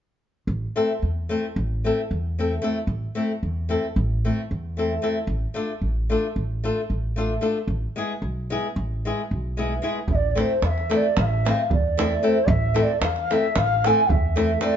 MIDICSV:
0, 0, Header, 1, 5, 480
1, 0, Start_track
1, 0, Key_signature, 0, "minor"
1, 0, Tempo, 532860
1, 423, Time_signature, 9, 3, 24, 8
1, 13300, End_track
2, 0, Start_track
2, 0, Title_t, "Ney"
2, 0, Program_c, 0, 77
2, 9103, Note_on_c, 0, 76, 71
2, 9138, Note_on_c, 0, 74, 77
2, 9147, Note_off_c, 0, 76, 0
2, 9280, Note_off_c, 0, 74, 0
2, 9280, Note_on_c, 0, 74, 48
2, 9361, Note_on_c, 0, 72, 88
2, 9375, Note_off_c, 0, 74, 0
2, 9584, Note_on_c, 0, 77, 73
2, 9597, Note_off_c, 0, 72, 0
2, 9621, Note_on_c, 0, 76, 79
2, 9630, Note_off_c, 0, 77, 0
2, 9837, Note_off_c, 0, 76, 0
2, 9858, Note_on_c, 0, 74, 77
2, 10087, Note_on_c, 0, 77, 77
2, 10100, Note_off_c, 0, 74, 0
2, 10129, Note_on_c, 0, 76, 83
2, 10138, Note_off_c, 0, 77, 0
2, 10339, Note_on_c, 0, 77, 77
2, 10353, Note_off_c, 0, 76, 0
2, 10555, Note_off_c, 0, 77, 0
2, 10559, Note_on_c, 0, 74, 68
2, 11041, Note_on_c, 0, 72, 88
2, 11054, Note_off_c, 0, 74, 0
2, 11250, Note_on_c, 0, 76, 96
2, 11264, Note_off_c, 0, 72, 0
2, 11508, Note_off_c, 0, 76, 0
2, 11508, Note_on_c, 0, 76, 80
2, 11552, Note_on_c, 0, 74, 87
2, 11561, Note_off_c, 0, 76, 0
2, 11737, Note_on_c, 0, 77, 88
2, 11751, Note_off_c, 0, 74, 0
2, 12000, Note_on_c, 0, 76, 104
2, 12014, Note_off_c, 0, 77, 0
2, 12220, Note_on_c, 0, 77, 101
2, 12233, Note_off_c, 0, 76, 0
2, 12486, Note_on_c, 0, 80, 85
2, 12499, Note_off_c, 0, 77, 0
2, 12702, Note_on_c, 0, 76, 70
2, 12715, Note_off_c, 0, 80, 0
2, 13166, Note_off_c, 0, 76, 0
2, 13174, Note_on_c, 0, 74, 86
2, 13300, Note_off_c, 0, 74, 0
2, 13300, End_track
3, 0, Start_track
3, 0, Title_t, "Nylon-string guitar"
3, 0, Program_c, 1, 24
3, 682, Note_on_c, 1, 57, 55
3, 685, Note_on_c, 1, 60, 54
3, 687, Note_on_c, 1, 64, 49
3, 694, Note_on_c, 1, 69, 69
3, 820, Note_off_c, 1, 60, 0
3, 821, Note_off_c, 1, 57, 0
3, 823, Note_off_c, 1, 64, 0
3, 826, Note_off_c, 1, 69, 0
3, 1164, Note_on_c, 1, 57, 52
3, 1171, Note_on_c, 1, 60, 43
3, 1174, Note_on_c, 1, 64, 47
3, 1179, Note_on_c, 1, 69, 66
3, 1307, Note_off_c, 1, 57, 0
3, 1310, Note_off_c, 1, 60, 0
3, 1312, Note_off_c, 1, 64, 0
3, 1313, Note_off_c, 1, 69, 0
3, 1661, Note_on_c, 1, 57, 49
3, 1665, Note_on_c, 1, 60, 48
3, 1675, Note_on_c, 1, 64, 50
3, 1679, Note_on_c, 1, 69, 60
3, 1800, Note_off_c, 1, 57, 0
3, 1802, Note_off_c, 1, 60, 0
3, 1807, Note_off_c, 1, 64, 0
3, 1809, Note_off_c, 1, 69, 0
3, 2149, Note_on_c, 1, 57, 54
3, 2154, Note_on_c, 1, 60, 53
3, 2158, Note_on_c, 1, 64, 46
3, 2165, Note_on_c, 1, 69, 63
3, 2279, Note_off_c, 1, 57, 0
3, 2281, Note_off_c, 1, 60, 0
3, 2284, Note_off_c, 1, 64, 0
3, 2287, Note_off_c, 1, 69, 0
3, 2358, Note_on_c, 1, 57, 65
3, 2365, Note_on_c, 1, 60, 46
3, 2373, Note_on_c, 1, 64, 60
3, 2379, Note_on_c, 1, 69, 61
3, 2495, Note_off_c, 1, 57, 0
3, 2499, Note_off_c, 1, 60, 0
3, 2501, Note_off_c, 1, 64, 0
3, 2505, Note_off_c, 1, 69, 0
3, 2838, Note_on_c, 1, 57, 55
3, 2846, Note_on_c, 1, 60, 58
3, 2851, Note_on_c, 1, 64, 48
3, 2856, Note_on_c, 1, 69, 57
3, 2981, Note_off_c, 1, 57, 0
3, 2985, Note_off_c, 1, 60, 0
3, 2987, Note_off_c, 1, 64, 0
3, 2990, Note_off_c, 1, 69, 0
3, 3322, Note_on_c, 1, 57, 55
3, 3330, Note_on_c, 1, 60, 55
3, 3335, Note_on_c, 1, 64, 50
3, 3340, Note_on_c, 1, 69, 62
3, 3468, Note_off_c, 1, 57, 0
3, 3472, Note_off_c, 1, 60, 0
3, 3475, Note_off_c, 1, 64, 0
3, 3476, Note_off_c, 1, 69, 0
3, 3826, Note_on_c, 1, 57, 62
3, 3831, Note_on_c, 1, 60, 46
3, 3840, Note_on_c, 1, 64, 47
3, 3840, Note_on_c, 1, 69, 53
3, 3966, Note_off_c, 1, 57, 0
3, 3967, Note_off_c, 1, 60, 0
3, 3972, Note_off_c, 1, 69, 0
3, 3973, Note_off_c, 1, 64, 0
3, 4296, Note_on_c, 1, 57, 54
3, 4309, Note_on_c, 1, 60, 50
3, 4312, Note_on_c, 1, 64, 44
3, 4316, Note_on_c, 1, 69, 56
3, 4435, Note_off_c, 1, 57, 0
3, 4441, Note_off_c, 1, 60, 0
3, 4443, Note_off_c, 1, 64, 0
3, 4445, Note_off_c, 1, 69, 0
3, 4520, Note_on_c, 1, 57, 47
3, 4524, Note_on_c, 1, 60, 51
3, 4533, Note_on_c, 1, 64, 54
3, 4537, Note_on_c, 1, 69, 67
3, 4659, Note_off_c, 1, 57, 0
3, 4660, Note_off_c, 1, 60, 0
3, 4665, Note_off_c, 1, 64, 0
3, 4665, Note_off_c, 1, 69, 0
3, 4991, Note_on_c, 1, 57, 48
3, 4998, Note_on_c, 1, 62, 57
3, 5003, Note_on_c, 1, 65, 54
3, 5010, Note_on_c, 1, 69, 71
3, 5140, Note_off_c, 1, 57, 0
3, 5143, Note_off_c, 1, 62, 0
3, 5146, Note_off_c, 1, 65, 0
3, 5149, Note_off_c, 1, 69, 0
3, 5491, Note_on_c, 1, 57, 54
3, 5496, Note_on_c, 1, 62, 54
3, 5505, Note_on_c, 1, 65, 44
3, 5510, Note_on_c, 1, 69, 64
3, 5635, Note_off_c, 1, 57, 0
3, 5637, Note_off_c, 1, 62, 0
3, 5642, Note_off_c, 1, 65, 0
3, 5644, Note_off_c, 1, 69, 0
3, 5977, Note_on_c, 1, 57, 55
3, 5981, Note_on_c, 1, 62, 57
3, 5987, Note_on_c, 1, 65, 48
3, 5993, Note_on_c, 1, 69, 66
3, 6124, Note_off_c, 1, 57, 0
3, 6125, Note_off_c, 1, 62, 0
3, 6128, Note_off_c, 1, 65, 0
3, 6131, Note_off_c, 1, 69, 0
3, 6450, Note_on_c, 1, 57, 55
3, 6462, Note_on_c, 1, 62, 59
3, 6464, Note_on_c, 1, 65, 60
3, 6470, Note_on_c, 1, 69, 60
3, 6594, Note_off_c, 1, 57, 0
3, 6600, Note_off_c, 1, 65, 0
3, 6601, Note_off_c, 1, 62, 0
3, 6604, Note_off_c, 1, 69, 0
3, 6675, Note_on_c, 1, 57, 57
3, 6680, Note_on_c, 1, 62, 56
3, 6684, Note_on_c, 1, 65, 51
3, 6689, Note_on_c, 1, 69, 67
3, 6818, Note_off_c, 1, 57, 0
3, 6820, Note_off_c, 1, 62, 0
3, 6823, Note_off_c, 1, 65, 0
3, 6825, Note_off_c, 1, 69, 0
3, 7169, Note_on_c, 1, 56, 56
3, 7175, Note_on_c, 1, 59, 53
3, 7182, Note_on_c, 1, 64, 48
3, 7189, Note_on_c, 1, 68, 70
3, 7310, Note_off_c, 1, 56, 0
3, 7313, Note_off_c, 1, 59, 0
3, 7317, Note_off_c, 1, 64, 0
3, 7321, Note_off_c, 1, 68, 0
3, 7659, Note_on_c, 1, 56, 68
3, 7662, Note_on_c, 1, 59, 60
3, 7671, Note_on_c, 1, 64, 50
3, 7676, Note_on_c, 1, 68, 68
3, 7801, Note_off_c, 1, 56, 0
3, 7801, Note_off_c, 1, 59, 0
3, 7807, Note_off_c, 1, 64, 0
3, 7807, Note_off_c, 1, 68, 0
3, 8154, Note_on_c, 1, 56, 55
3, 8158, Note_on_c, 1, 59, 51
3, 8165, Note_on_c, 1, 64, 50
3, 8171, Note_on_c, 1, 68, 55
3, 8292, Note_off_c, 1, 56, 0
3, 8294, Note_off_c, 1, 59, 0
3, 8298, Note_off_c, 1, 64, 0
3, 8301, Note_off_c, 1, 68, 0
3, 8622, Note_on_c, 1, 56, 55
3, 8632, Note_on_c, 1, 59, 51
3, 8636, Note_on_c, 1, 64, 56
3, 8637, Note_on_c, 1, 68, 62
3, 8760, Note_off_c, 1, 56, 0
3, 8766, Note_off_c, 1, 59, 0
3, 8767, Note_off_c, 1, 64, 0
3, 8768, Note_off_c, 1, 68, 0
3, 8846, Note_on_c, 1, 56, 63
3, 8853, Note_on_c, 1, 59, 51
3, 8858, Note_on_c, 1, 64, 54
3, 8864, Note_on_c, 1, 68, 67
3, 8983, Note_off_c, 1, 56, 0
3, 8987, Note_off_c, 1, 59, 0
3, 8989, Note_off_c, 1, 64, 0
3, 8992, Note_off_c, 1, 68, 0
3, 9326, Note_on_c, 1, 57, 53
3, 9331, Note_on_c, 1, 60, 53
3, 9337, Note_on_c, 1, 64, 59
3, 9341, Note_on_c, 1, 69, 64
3, 9469, Note_off_c, 1, 57, 0
3, 9470, Note_off_c, 1, 60, 0
3, 9474, Note_off_c, 1, 64, 0
3, 9475, Note_off_c, 1, 69, 0
3, 9815, Note_on_c, 1, 57, 59
3, 9821, Note_on_c, 1, 60, 59
3, 9827, Note_on_c, 1, 64, 51
3, 9832, Note_on_c, 1, 69, 61
3, 9957, Note_off_c, 1, 57, 0
3, 9960, Note_off_c, 1, 60, 0
3, 9963, Note_off_c, 1, 64, 0
3, 9965, Note_off_c, 1, 69, 0
3, 10316, Note_on_c, 1, 57, 59
3, 10321, Note_on_c, 1, 60, 53
3, 10325, Note_on_c, 1, 64, 54
3, 10333, Note_on_c, 1, 69, 61
3, 10451, Note_off_c, 1, 57, 0
3, 10454, Note_off_c, 1, 60, 0
3, 10456, Note_off_c, 1, 64, 0
3, 10460, Note_off_c, 1, 69, 0
3, 10786, Note_on_c, 1, 57, 65
3, 10792, Note_on_c, 1, 60, 52
3, 10798, Note_on_c, 1, 64, 56
3, 10804, Note_on_c, 1, 69, 66
3, 10920, Note_off_c, 1, 57, 0
3, 10923, Note_off_c, 1, 60, 0
3, 10926, Note_off_c, 1, 64, 0
3, 10928, Note_off_c, 1, 69, 0
3, 11013, Note_on_c, 1, 57, 53
3, 11016, Note_on_c, 1, 60, 51
3, 11021, Note_on_c, 1, 64, 61
3, 11026, Note_on_c, 1, 69, 59
3, 11144, Note_off_c, 1, 57, 0
3, 11146, Note_off_c, 1, 60, 0
3, 11147, Note_off_c, 1, 64, 0
3, 11150, Note_off_c, 1, 69, 0
3, 11478, Note_on_c, 1, 57, 53
3, 11482, Note_on_c, 1, 60, 50
3, 11486, Note_on_c, 1, 64, 55
3, 11495, Note_on_c, 1, 69, 64
3, 11621, Note_off_c, 1, 57, 0
3, 11623, Note_off_c, 1, 60, 0
3, 11625, Note_off_c, 1, 64, 0
3, 11629, Note_off_c, 1, 69, 0
3, 11984, Note_on_c, 1, 57, 58
3, 11985, Note_on_c, 1, 60, 48
3, 11991, Note_on_c, 1, 64, 48
3, 11996, Note_on_c, 1, 69, 64
3, 12117, Note_off_c, 1, 60, 0
3, 12118, Note_off_c, 1, 57, 0
3, 12121, Note_off_c, 1, 64, 0
3, 12124, Note_off_c, 1, 69, 0
3, 12479, Note_on_c, 1, 57, 60
3, 12484, Note_on_c, 1, 60, 51
3, 12489, Note_on_c, 1, 64, 50
3, 12495, Note_on_c, 1, 69, 69
3, 12609, Note_off_c, 1, 57, 0
3, 12612, Note_off_c, 1, 60, 0
3, 12615, Note_off_c, 1, 64, 0
3, 12616, Note_off_c, 1, 69, 0
3, 12933, Note_on_c, 1, 57, 57
3, 12938, Note_on_c, 1, 60, 56
3, 12944, Note_on_c, 1, 64, 48
3, 12950, Note_on_c, 1, 69, 66
3, 13070, Note_off_c, 1, 57, 0
3, 13072, Note_off_c, 1, 60, 0
3, 13075, Note_off_c, 1, 64, 0
3, 13078, Note_off_c, 1, 69, 0
3, 13158, Note_on_c, 1, 57, 61
3, 13161, Note_on_c, 1, 60, 52
3, 13171, Note_on_c, 1, 64, 59
3, 13173, Note_on_c, 1, 69, 78
3, 13293, Note_off_c, 1, 57, 0
3, 13294, Note_off_c, 1, 60, 0
3, 13300, Note_off_c, 1, 64, 0
3, 13300, Note_off_c, 1, 69, 0
3, 13300, End_track
4, 0, Start_track
4, 0, Title_t, "Upright bass"
4, 0, Program_c, 2, 32
4, 427, Note_on_c, 2, 33, 77
4, 583, Note_off_c, 2, 33, 0
4, 923, Note_on_c, 2, 40, 63
4, 1215, Note_off_c, 2, 40, 0
4, 1407, Note_on_c, 2, 33, 81
4, 1701, Note_off_c, 2, 33, 0
4, 1898, Note_on_c, 2, 40, 69
4, 2313, Note_off_c, 2, 40, 0
4, 2587, Note_on_c, 2, 33, 75
4, 2745, Note_off_c, 2, 33, 0
4, 3087, Note_on_c, 2, 40, 66
4, 3379, Note_off_c, 2, 40, 0
4, 3569, Note_on_c, 2, 33, 86
4, 3864, Note_off_c, 2, 33, 0
4, 4062, Note_on_c, 2, 40, 66
4, 4477, Note_off_c, 2, 40, 0
4, 4749, Note_on_c, 2, 33, 82
4, 4908, Note_off_c, 2, 33, 0
4, 5238, Note_on_c, 2, 33, 62
4, 5534, Note_off_c, 2, 33, 0
4, 5729, Note_on_c, 2, 33, 73
4, 6025, Note_off_c, 2, 33, 0
4, 6213, Note_on_c, 2, 33, 64
4, 6632, Note_off_c, 2, 33, 0
4, 6913, Note_on_c, 2, 33, 79
4, 7072, Note_off_c, 2, 33, 0
4, 7403, Note_on_c, 2, 35, 68
4, 7699, Note_off_c, 2, 35, 0
4, 7892, Note_on_c, 2, 33, 81
4, 8187, Note_off_c, 2, 33, 0
4, 8388, Note_on_c, 2, 35, 69
4, 8802, Note_off_c, 2, 35, 0
4, 9078, Note_on_c, 2, 33, 73
4, 9371, Note_off_c, 2, 33, 0
4, 9568, Note_on_c, 2, 40, 73
4, 9861, Note_off_c, 2, 40, 0
4, 10062, Note_on_c, 2, 33, 101
4, 10353, Note_off_c, 2, 33, 0
4, 10546, Note_on_c, 2, 40, 78
4, 10958, Note_off_c, 2, 40, 0
4, 11240, Note_on_c, 2, 33, 104
4, 11530, Note_off_c, 2, 33, 0
4, 11721, Note_on_c, 2, 40, 68
4, 12014, Note_off_c, 2, 40, 0
4, 12214, Note_on_c, 2, 33, 90
4, 12505, Note_off_c, 2, 33, 0
4, 12699, Note_on_c, 2, 40, 73
4, 13112, Note_off_c, 2, 40, 0
4, 13300, End_track
5, 0, Start_track
5, 0, Title_t, "Davul"
5, 9077, Note_on_c, 9, 43, 74
5, 9167, Note_off_c, 9, 43, 0
5, 9347, Note_on_c, 9, 37, 47
5, 9437, Note_off_c, 9, 37, 0
5, 9570, Note_on_c, 9, 37, 62
5, 9660, Note_off_c, 9, 37, 0
5, 9708, Note_on_c, 9, 37, 23
5, 9798, Note_off_c, 9, 37, 0
5, 9830, Note_on_c, 9, 37, 51
5, 9920, Note_off_c, 9, 37, 0
5, 10058, Note_on_c, 9, 37, 63
5, 10148, Note_off_c, 9, 37, 0
5, 10327, Note_on_c, 9, 37, 64
5, 10417, Note_off_c, 9, 37, 0
5, 10542, Note_on_c, 9, 43, 90
5, 10632, Note_off_c, 9, 43, 0
5, 10799, Note_on_c, 9, 37, 69
5, 10889, Note_off_c, 9, 37, 0
5, 11231, Note_on_c, 9, 43, 85
5, 11321, Note_off_c, 9, 43, 0
5, 11493, Note_on_c, 9, 37, 53
5, 11583, Note_off_c, 9, 37, 0
5, 11724, Note_on_c, 9, 37, 73
5, 11814, Note_off_c, 9, 37, 0
5, 11855, Note_on_c, 9, 37, 24
5, 11945, Note_off_c, 9, 37, 0
5, 11988, Note_on_c, 9, 37, 51
5, 12078, Note_off_c, 9, 37, 0
5, 12211, Note_on_c, 9, 37, 64
5, 12301, Note_off_c, 9, 37, 0
5, 12471, Note_on_c, 9, 37, 58
5, 12561, Note_off_c, 9, 37, 0
5, 12695, Note_on_c, 9, 43, 92
5, 12785, Note_off_c, 9, 43, 0
5, 12945, Note_on_c, 9, 37, 51
5, 13035, Note_off_c, 9, 37, 0
5, 13160, Note_on_c, 9, 37, 53
5, 13250, Note_off_c, 9, 37, 0
5, 13300, End_track
0, 0, End_of_file